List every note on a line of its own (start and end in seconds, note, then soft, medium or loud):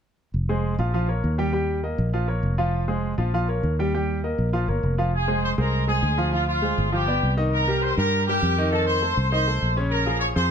0.34 0.76 F1 medium
0.49 0.74 G#3 medium
0.49 0.74 G#4 medium
0.49 0.74 C5 medium
0.79 1.21 A#1 medium
0.79 0.91 F3 medium
0.79 0.91 F4 medium
0.79 0.92 F5 medium
0.94 1.06 F3 medium
0.94 1.06 F4 medium
0.94 1.07 F5 medium
1.08 1.33 A#3 medium
1.08 1.33 A#4 medium
1.08 1.33 C#5 medium
1.24 1.93 D#2 medium
1.38 1.51 G3 medium
1.38 1.51 G4 medium
1.38 1.51 G5 medium
1.53 1.78 G3 medium
1.53 1.78 G4 medium
1.53 1.78 G5 medium
1.83 2.08 A#3 medium
1.83 2.08 A#4 medium
1.83 2.08 D#5 medium
1.98 2.40 A#1 medium
2.13 2.26 F3 medium
2.13 2.26 F4 medium
2.13 2.26 F5 medium
2.28 2.53 A#3 medium
2.28 2.53 A#4 medium
2.28 2.53 C#5 medium
2.43 3.13 F1 medium
2.58 2.83 F3 medium
2.58 2.83 F4 medium
2.58 2.83 F5 medium
2.88 3.13 G#3 medium
2.88 3.13 G#4 medium
2.88 3.13 C5 medium
3.18 3.60 A#1 medium
3.18 3.30 F3 medium
3.18 3.30 F4 medium
3.18 3.31 F5 medium
3.34 3.46 F3 medium
3.34 3.46 F4 medium
3.34 3.46 F5 medium
3.48 3.73 A#3 medium
3.48 3.73 A#4 medium
3.48 3.73 C#5 medium
3.63 4.33 D#2 medium
3.79 3.91 G3 medium
3.79 3.91 G4 medium
3.79 3.91 G5 medium
3.94 4.18 G3 medium
3.94 4.19 G4 medium
3.94 4.19 G5 medium
4.23 4.48 A#3 medium
4.23 4.48 A#4 medium
4.23 4.48 D#5 medium
4.38 4.66 A#1 medium
4.53 4.65 F3 medium
4.53 4.65 F4 medium
4.53 4.66 F5 medium
4.68 4.82 G1 medium
4.68 4.93 A#3 medium
4.68 4.93 A#4 medium
4.68 4.93 C#5 medium
4.83 5.52 F1 medium
4.98 5.11 F3 medium
4.98 5.10 F4 medium
4.98 5.11 F5 medium
5.14 5.41 G#4 medium
5.14 5.42 G#5 medium
5.28 5.52 G#3 medium
5.28 5.53 G#4 medium
5.28 5.53 C5 medium
5.44 5.51 C5 medium
5.44 5.51 C6 medium
5.58 6.00 C2 medium
5.58 5.82 G#3 medium
5.58 5.82 G#4 medium
5.58 5.86 A#4 medium
5.58 5.83 C5 medium
5.58 5.87 A#5 medium
5.87 6.12 G#3 medium
5.87 6.30 G#4 medium
5.87 6.13 G#4 medium
5.87 6.12 C5 medium
5.87 6.30 G#5 medium
6.02 6.72 D2 medium
6.18 6.30 F3 medium
6.18 6.30 F4 medium
6.18 6.30 F5 medium
6.32 6.57 F3 medium
6.32 6.46 F4 medium
6.32 6.57 F4 medium
6.32 6.57 F5 medium
6.32 6.47 F5 medium
6.48 6.90 F4 medium
6.48 6.90 F5 medium
6.62 6.87 G#3 medium
6.62 6.87 G#4 medium
6.62 6.87 C5 medium
6.78 7.20 G1 loud
6.92 7.05 F3 medium
6.92 7.05 F4 medium
6.92 7.34 G4 medium
6.92 7.05 F5 medium
6.92 7.36 G5 medium
7.07 7.32 B3 medium
7.07 7.32 B4 medium
7.07 7.32 D5 medium
7.23 7.92 C2 medium
7.37 7.62 D#3 medium
7.37 7.62 D#4 medium
7.37 7.62 D#5 medium
7.52 7.80 A#4 medium
7.52 7.81 A#5 medium
7.67 7.92 G3 medium
7.67 7.92 G4 medium
7.67 7.92 A#4 medium
7.82 7.97 C5 loud
7.82 7.99 C6 medium
7.96 8.39 G2 medium
7.96 8.23 G3 medium
7.96 8.23 G4 medium
7.96 8.25 A#4 medium
7.96 8.23 A#4 medium
7.96 8.26 A#5 medium
8.26 8.53 G3 medium
8.26 8.68 G4 loud
8.26 8.53 G4 medium
8.26 8.53 A#4 medium
8.26 8.70 G5 medium
8.42 9.12 F2 medium
8.58 8.70 D#3 medium
8.58 8.70 D#4 medium
8.58 8.70 D#5 medium
8.71 8.97 D#3 medium
8.71 8.97 D#4 medium
8.71 8.86 A4 medium
8.71 8.97 D#5 medium
8.71 8.87 A5 medium
8.86 9.28 C5 loud
8.86 9.29 C6 medium
9.02 9.27 A3 medium
9.02 9.27 A4 medium
9.02 9.27 C5 medium
9.17 9.59 C2 medium
9.31 9.44 D#3 medium
9.31 9.44 D#4 medium
9.31 9.73 C5 loud
9.31 9.45 D#5 medium
9.31 9.74 C6 medium
9.47 9.72 A3 medium
9.47 9.72 A4 medium
9.47 9.72 C5 medium
9.62 10.32 A#1 medium
9.76 10.01 C#3 medium
9.76 10.01 C#4 medium
9.76 10.02 C#5 medium
9.91 10.19 A#4 medium
9.91 10.20 A#5 medium
10.06 10.31 F3 medium
10.06 10.31 F4 medium
10.06 10.31 G#4 medium
10.20 10.27 C#5 medium
10.20 10.28 C#6 medium
10.35 10.51 F2 medium
10.35 10.51 F3 medium
10.35 10.51 F4 medium
10.35 10.51 G#4 medium
10.35 10.51 C5 medium
10.35 10.51 C6 medium